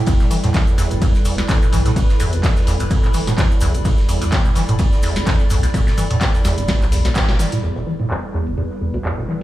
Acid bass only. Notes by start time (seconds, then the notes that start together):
0.07 E2
0.20 E1
0.31 E3
0.43 A2
0.54 E2
0.78 E2
0.91 E1
1.02 E2
1.25 E2
1.38 D2
1.49 E2
1.62 E1
1.73 E3
1.86 A2
1.96 E2
2.20 E2
2.33 E1
2.44 E2
2.67 E2
2.80 D2
2.91 E2
3.04 E1
3.14 E3
3.27 A2
3.38 E2
3.62 E2
3.74 E1
3.85 E2
4.09 E2
4.21 D2
4.32 E2
4.45 E1
4.56 E3
4.69 A2
4.79 E2
5.03 E2
5.16 E1
5.27 E2
5.50 E2
5.63 D2
5.74 E2
5.87 E1
5.98 E3
6.10 A2
6.21 E2
6.45 E2
6.58 E1
6.68 E2
6.92 E2
7.05 D2
7.16 E2
7.29 E1
7.39 E3
7.52 A2
7.63 E2
7.76 E1
7.87 E3
8.00 A2
8.10 E2
8.34 E2
8.47 E1
8.57 E2
8.81 E2
8.94 D2
9.05 E2
9.18 E1
9.28 E3